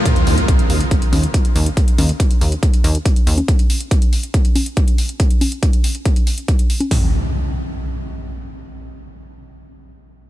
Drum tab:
HH |xxoxxxoxxxoxxxox|xxoxxxoxxxoxxxox|xxoxxxoxxxoxxxox|xxoxxxoxxxoxxxox|
CG |----------o-----|--o------------o|----------o-----|--o------------o|
BD |o---o---o---o---|o---o---o---o---|o---o---o---o---|o---o---o---o---|

HH |o---------------|----------------|
CG |----------------|----------------|
BD |o---------------|----------------|